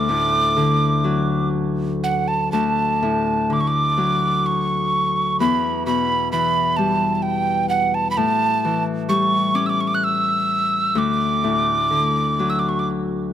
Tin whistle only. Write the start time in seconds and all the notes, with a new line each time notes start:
Already playing: D6
2.04 F#5
2.28 A5
2.52 A5
3.53 D6
3.60 C#6
3.67 D6
4.46 C#6
5.40 B5
5.86 B5
6.32 B5
6.77 A5
7.15 A5
7.22 G5
7.69 F#5
7.94 A5
8.11 B5
8.17 A5
9.09 C#6
9.55 D6
9.66 D6 E6
9.81 C#6
9.87 D6
9.95 F#6
10.04 E6
10.98 D6
12.50 E6
12.59 D6
12.69 C#6
12.79 D6